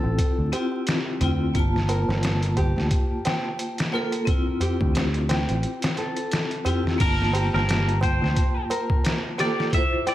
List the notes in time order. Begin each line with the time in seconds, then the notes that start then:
Already playing: C4 E4 F4 A4
0.04 A1, tabla na
0.18 kick, closed hi-hat, tabla na
0.38 D2
0.52 C4 E4 F4 G4, closed hi-hat, tabla na
0.72 tabla na
0.86 snare, closed hi-hat, tabla na
1.20 D2 C4 E4 F4 G5, closed hi-hat, tabla na, tabla ge
1.40 tabla na
1.54 G1 A#3 F4, kick, closed hi-hat, tabla na
1.59 A5
1.76 snare
1.89 A#4, closed hi-hat, tabla na
2.08 G1, snare, tabla na
2.22 snare, closed hi-hat, tabla na
2.43 closed hi-hat
2.57 G4, kick, closed hi-hat, tabla na
2.76 D2, snare, tabla na
2.91 kick, closed hi-hat, tabla na
3.25 G5, snare, closed hi-hat, tabla na
3.45 tabla na
3.59 closed hi-hat, tabla na
3.78 snare, closed hi-hat
3.93 A#3 F4 A4 A#4, tabla na
4.12 closed hi-hat, tabla na
4.25 C4 E4, kick, closed hi-hat, tabla na
4.31 F4
4.60 G4, closed hi-hat, tabla na, tabla ge
4.80 D2, kick, tabla na
4.95 snare, closed hi-hat, tabla na
5.14 closed hi-hat
5.29 G5, snare, closed hi-hat, tabla na
5.49 A1, closed hi-hat, tabla na
5.63 closed hi-hat, tabla na
5.82 snare, closed hi-hat
5.97 A4, closed hi-hat, tabla na
6.17 closed hi-hat, tabla na
6.32 snare, closed hi-hat, tabla na
6.51 closed hi-hat
6.65 C4 E4 F4 G4, closed hi-hat, tabla na, tabla ge
6.84 snare, tabla na, tabla ge
6.98 G1 A#3 F4 A#4, kick, closed hi-hat, crash, tabla na
7.04 A5
7.22 snare
7.33 G4, closed hi-hat, tabla na
7.53 G1 A#4, snare, tabla na
7.68 snare, closed hi-hat, tabla na
7.89 closed hi-hat
8.01 C5 G5, kick, closed hi-hat, tabla na
8.22 D2, snare, tabla na
8.36 kick, closed hi-hat, tabla na
8.70 A#4, closed hi-hat, tabla na
8.89 kick, tabla na
9.04 snare, closed hi-hat, tabla na
9.38 A#3 F4 G4 A4 D5, snare, closed hi-hat, tabla na
9.58 snare, tabla na
9.70 E4 F4, kick, closed hi-hat, tabla na
9.74 C5 E5
10.07 D5 G5, closed hi-hat, tabla na